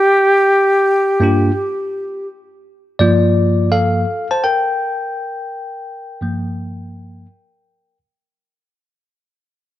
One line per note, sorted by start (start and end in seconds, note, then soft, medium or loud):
0.00 2.27 G4 loud
1.20 1.49 G2 medium
1.20 1.49 A#3 medium
1.20 1.50 D4 medium
1.20 1.50 F4 medium
1.20 1.51 G4 medium
2.99 4.03 G2 medium
2.99 4.04 F3 soft
2.99 4.04 A#3 medium
2.99 3.69 F4 medium
2.99 3.74 D5 medium
3.72 4.27 A4 medium
3.72 4.32 F5 medium
4.31 4.43 C5 medium
4.31 4.44 A5 medium
4.44 7.97 A#4 medium
4.44 7.97 G5 medium
6.21 7.25 G2 soft
6.21 7.25 F3 soft
6.21 7.26 A#3 medium